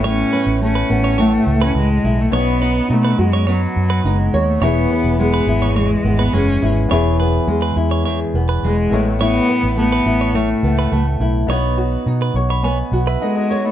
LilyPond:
<<
  \new Staff \with { instrumentName = "Clean electric guitar" } { \time 4/4 \key e \major \tempo 4 = 105 cis''8 b'8 r16 b'16 r16 cis''16 cis''16 r8 b'8 r8. | cis''8 b'8 r16 b'16 r16 cis''16 cis''16 r8 b'8 r8. | cis''8 b'8 r16 b'16 r16 cis''16 cis''16 r8 b'8 r8. | cis''8 b'8 r16 b'16 r16 cis''16 cis''16 r8 b'8 r8. |
cis''8 b'8 r16 b'16 r16 cis''16 cis''16 r8 b'8 r8. | cis''8 b'8 r16 b'16 r16 cis''16 cis''16 r8 b'8 r8. | }
  \new Staff \with { instrumentName = "Grand piano" } { \time 4/4 \key e \major << { r1 | r1 | r1 | r1 |
r1 | r4. cis'''16 b''16 gis''8 fis''16 e''16 <a' dis'' fis''>16 <fis' dis''>16 cis''16 <dis' b'>16 | } \\ { <b cis' e' a' cis''>2.~ <b cis' e' a' cis''>8 r8 | <b cis' dis' fis' cis''>1 | <b e' gis' cis''>2.~ <b e' gis' cis''>8 <b e' gis' b'>8 | <b e' gis' cis''>2.~ <b e' gis' cis''>8 <b e' a' cis''>8~ |
<b e' a' cis''>2.~ <b e' a' cis''>8 r8 | <b dis' fis' cis''>1 | } >> }
  \new Staff \with { instrumentName = "Nylon-string guitar" } { \time 4/4 \key e \major a,8 cis'8 a8 b8 a,4. e'8 | b8 dis'8 dis'8 fis'8 b4 dis'8 cis''8 | <e, e'>8 b8 gis8 e'8 e,8 b8 gis8 e'8 | <e, e'>8 b8 gis8 e'8 e,8 b8 gis8 a,8 |
<a, e'>8 b8 a8 e'8 a,8 b8 a8 e'8 | <b cis''>8 fis'8 dis'8 cis''8 b8 fis'8 dis'8 cis''8 | }
  \new Staff \with { instrumentName = "Cello" } { \time 4/4 \key e \major cis'4 cis'4 a8. cis'16 gis8. a16 | b4 a8 gis8 fis4 gis8. a16 | b4 b4 gis8. b16 cis'8. r16 | r2. gis8. a16 |
b4 b4 a4. r8 | r2. gis8. a16 | }
  \new Staff \with { instrumentName = "Fingered electric bass" } { \clef bass \time 4/4 \key e \major a,,8 r16 a,,8. a,,4 cis,8 cis,8 b,,8 | b,,4 b,8 fis,4 fis,8 fis,,8 dis,8 | e,,8 r16 e,,8. gis,,4 gis,,8 fis,,8 gis,,8 | e,,4 e,8 e,4 e,,8 e,,8 a,,8~ |
a,,8 r16 a,,8. a,,4 cis,8 cis,8 b,,8 | b,,4 b,8 b,,4 b,,8 r4 | }
>>